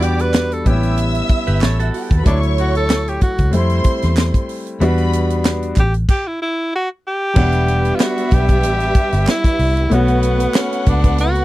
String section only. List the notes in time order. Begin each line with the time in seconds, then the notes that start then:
Already playing: D5 D6
0.66 E5 E6
1.94 F#4 F#5
2.02 G4 G5
2.11 A4 A5
2.18 B4 B5
2.26 C#5 C#6
3.54 C5 C6
4.81 B4 B5
7.36 G3 B3 E5
9.91 B3 B4 F#5